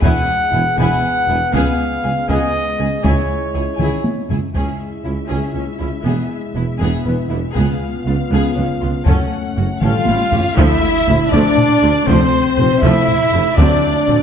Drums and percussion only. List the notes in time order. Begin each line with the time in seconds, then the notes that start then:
0.02 taiko
0.78 taiko
1.54 taiko
2.29 taiko
3.04 taiko
3.79 taiko mid
4.04 taiko high
4.30 taiko low
4.55 taiko
7.55 taiko
8.69 taiko
9.06 taiko
9.81 taiko mid
10.06 taiko high
10.32 taiko low
10.57 taiko
11.07 taiko low-mid
11.32 taiko
11.57 taiko low-mid
12.07 taiko
12.57 taiko low-mid
12.82 taiko
13.08 taiko low-mid
13.58 taiko
14.08 taiko low-mid